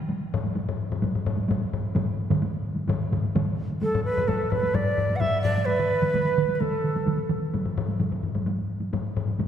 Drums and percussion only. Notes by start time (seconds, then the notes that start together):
0.09 taiko high
0.34 taiko low-mid
0.44 taiko high
0.56 taiko high
0.69 taiko low-mid
0.92 taiko low-mid
1.02 taiko low-mid, taiko high
1.15 taiko low-mid
1.25 taiko low-mid, taiko high
1.37 taiko high
1.49 taiko low-mid, taiko high
1.73 taiko low-mid
1.95 taiko low-mid, taiko mid, taiko high
2.30 taiko low-mid, taiko mid, taiko high
2.42 taiko high
2.76 taiko high
2.88 taiko low-mid, taiko mid, taiko high
3.12 taiko low-mid, taiko mid, taiko high
3.24 taiko high
3.35 taiko low-mid, taiko mid, taiko high
3.70 taiko high
3.82 taiko high
3.95 taiko low-mid
4.17 taiko low-mid, taiko high
4.28 taiko low-mid, taiko high
4.52 taiko low-mid
4.63 taiko high
4.74 taiko low-mid, taiko high
4.98 taiko low-mid
5.09 taiko low-mid, taiko high
5.21 taiko low-mid, taiko high
5.45 taiko low-mid
5.57 taiko high
5.68 taiko high
5.79 taiko mid
6.03 taiko mid, taiko high
6.14 taiko mid, taiko high
6.38 taiko mid
6.49 taiko high
6.61 taiko mid, taiko high
6.85 taiko mid
6.95 taiko mid, taiko high
7.07 taiko mid, taiko high
7.30 taiko mid
7.54 taiko low-mid, taiko high
7.65 taiko low-mid
7.78 taiko low-mid
7.88 taiko high
8.00 taiko low-mid, taiko high
8.12 taiko low-mid
8.23 taiko low-mid
8.35 taiko low-mid, taiko high
8.46 taiko high
8.80 taiko high
8.93 taiko low-mid, taiko high
9.17 taiko low-mid
9.28 taiko high
9.39 taiko low-mid, taiko mid, taiko high